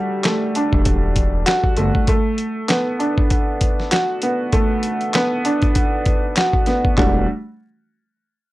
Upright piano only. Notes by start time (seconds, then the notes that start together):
Already playing: G3 A3 D4 F#4
0.25 A3
0.56 D4
1.46 F#4
1.77 A3
2.08 A3
2.68 B3
2.99 D4
3.91 F#4
4.23 B3
4.53 A3
5.14 B3
5.45 D4
6.37 F#4
6.67 B3
6.98 G3 A3 D4 F#4